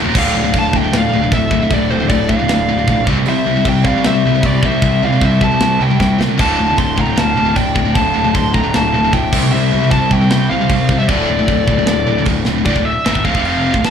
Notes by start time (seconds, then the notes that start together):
0.05 D#1 D#2 A#2
0.15 D1 D2 A2 D3 D5 F5, kick, crash
0.35 D1 D2 A2
0.44 D2 A2
0.54 D1 D2 A2, kick, crash
0.59 F5 A5
0.73 D1 D2 A2 G5, kick
0.78 E5
0.84 D2 A2
0.92 D1 D2 A2, snare, crash
0.97 D5 F5
1.11 D1 D2 A2
1.23 D2 A2
1.31 D1 D2 A2 E5, kick, crash
1.38 A4
1.51 D1 D2 A2, kick
1.62 D2 A2
1.71 D1 D2 A2 D3 D5, kick, crash
1.75 A4
1.90 D1 D2 A2 C5
1.97 D2 A2 A4
2.09 D1 D2 A2 D5, kick, crash
2.14 A4
2.28 D1 D2 A2 F5, kick
2.34 D5
2.39 D2 A2
2.48 D1 D2 A2, snare, crash
2.68 D1 D2 A2
2.78 D2 A2
2.88 A#1 D2 A2, kick, crash
3.07 C2 C3 G3 C4, kick
3.17 C3 G3
3.26 C2 C3 G3 C5 E5, crash
3.46 C2 C3 G3
3.57 C3 G3
3.65 C2 C3 G3 E5 G5, kick, crash
3.85 C2 C3 G3 D5 F5, kick
3.97 C3 G3
4.04 C2 C3 G3 C5 E5, snare, crash
4.25 C2 C3 G3
4.35 C3 G3
4.43 C2 C3 G3 G4 D5, kick, crash
4.62 C2 C3 G3 C4 C5 E5, kick
4.71 C3 G3
4.82 C2 C3 G3, kick, crash
5.02 C2 C3 G3 D5 F5
5.12 C3 G3
5.21 C2 C3 G3 C5, kick, crash
5.25 E5
5.41 C2 C3 G3 E5 A5, kick
5.52 C3 G3
5.60 C2 C3 G3, snare, crash
5.80 C2 C3 G3 E5 G5
5.90 C3 G3
5.99 C2 C3 G3, kick, snare
6.18 C2 C3 G3, snare
6.28 C3 G3
6.37 D1 D2 A2 D3 F5 A5, kick, splash, crash
6.57 D1 D2 A2
6.66 D2 A2
6.77 D1 D2 A2 A5 C6, kick, crash
6.96 D1 D2 A2 G5, kick
7.01 A#5
7.05 D2 A2
7.16 D1 D2 A2 F5 A5, snare, crash
7.36 D1 D2 A2
7.45 D2 A2
7.56 D1 D2 A2 D5 G5, kick, crash
7.75 D1 D2 A2, kick
7.85 D2 A2
7.95 D1 D2 A2 D3 F5 A5, kick, crash
8.14 D1 D2 A2
8.24 D2 A2
8.34 D1 D2 A2 A5 C6, kick, crash
8.54 D1 D2 A2 G5 A#5, kick
8.63 D2 A2
8.74 D1 D2 A2 F5 A5, snare, crash
8.94 D1 D2 A2
9.05 D2 A2
9.13 D1 D2 A2 E5 G5, kick, crash
9.33 C2 C3 G3 C4, kick, crash
9.43 C3 G3
9.52 C2 C3 G3 C5 E5, crash
9.73 C2 C3 G3
9.83 C3 G3
9.91 C2 C3 G3 E5 A5, kick, crash
10.11 C2 C3 G3 E5 G5, kick
10.21 C3 G3
10.30 C2 C3 G3, snare, crash
10.50 C2 C3 G3 C5 F5
10.61 C3 G3
10.69 C2 C3 G3, kick, crash
10.89 C2 C3 G3, kick
10.99 C3 G3 C5 E5
11.09 D1 D2 A2 D3 A4 D5, kick, crash
11.28 D1 D2 A2
11.39 D2 A2
11.48 D1 D2 A2, kick, crash
11.67 D1 D2 A2, kick
11.79 D2 A2
11.87 D1 D2 A2, snare, crash
12.07 D1 D2 A2
12.18 D2 A2
12.25 D1 D2 A2, kick, crash
12.45 D1 D2 A2, snare
12.58 D2 A2
12.65 D1 D2 A2 D5, kick, crash
12.76 D1 D2 A2, kick
12.85 E5
13.06 G#1 G#2 D#3, snare, crash
13.15 D1 D2 A2, kick
13.25 D1 D2 A2 F5, kick
13.33 F1 F2 C3 F3, kick
13.45 F5, crash
13.73 D1 D2 A2, kick
13.84 D1 D2 A2 A5, snare, crash